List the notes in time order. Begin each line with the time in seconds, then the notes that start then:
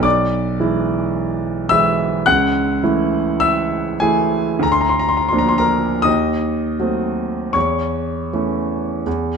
0.00 B1 D6
0.05 D5
0.60 E3 G#3 E4
1.69 E3 G#3 E4 E5 E6
2.26 C#2 F#5 F#6
2.83 E3 A3 E4
3.40 E5 E6
4.00 E3 A3 E4 G#4 G#5
4.59 D2 A#5
4.72 C6
4.81 A#5
4.89 C6
4.99 A#5
5.09 C6
5.17 A#5
5.29 F3 C6
5.33 A#3 D4
5.38 A#5
5.49 C6
5.58 A#4 A#5
6.02 D#2 D#5 D#6
6.80 F#3 A3 C4
7.53 E2 C#5 C#6
8.33 E3 A3 C#4
9.07 E2